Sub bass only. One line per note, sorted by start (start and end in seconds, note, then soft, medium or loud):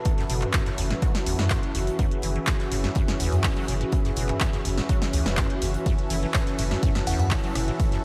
0.30 0.45 F#1 loud
0.78 0.93 F#1 medium
1.26 1.34 F#1 loud
1.39 1.53 F#2 medium
1.75 1.90 F#1 loud
2.23 2.38 F#1 loud
2.72 2.87 F#1 medium
3.20 3.28 F#1 loud
3.32 3.47 F#2 medium
3.68 3.83 F#1 loud
4.17 4.32 F#1 loud
4.65 4.80 F#1 medium
5.13 5.21 C#2 medium
5.26 5.40 E1 medium
5.62 5.77 F#1 medium
6.10 6.25 F#1 loud
6.59 6.74 F#1 medium
7.07 7.15 F#1 loud
7.19 7.34 F#2 medium
7.55 7.70 F#1 loud